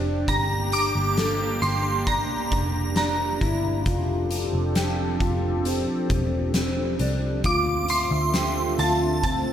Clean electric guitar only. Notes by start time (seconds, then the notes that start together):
Already playing: D4
0.28 G4
1.18 A4
1.63 G4
2.07 D4
2.97 D4
3.41 E4
3.86 F4
4.76 G4
5.21 F4
5.66 C4
6.55 C4
7.00 D4
7.45 F4
8.34 G4
8.79 F4
9.24 C4